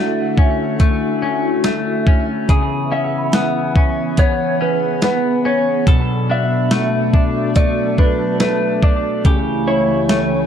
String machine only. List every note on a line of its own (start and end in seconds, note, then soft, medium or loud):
0.00 2.45 D3 medium
0.00 2.45 A3 medium
0.00 5.83 E4 medium
0.00 2.45 F#4 medium
2.49 5.83 E3 medium
2.49 9.21 B3 medium
2.49 5.84 G#4 medium
5.87 9.22 F#3 medium
5.87 9.22 D4 medium
5.87 9.22 A4 medium
9.25 10.46 C#2 medium
9.25 10.46 E3 medium
9.25 10.46 A3 medium
9.25 10.46 C#4 medium
9.25 10.46 G4 medium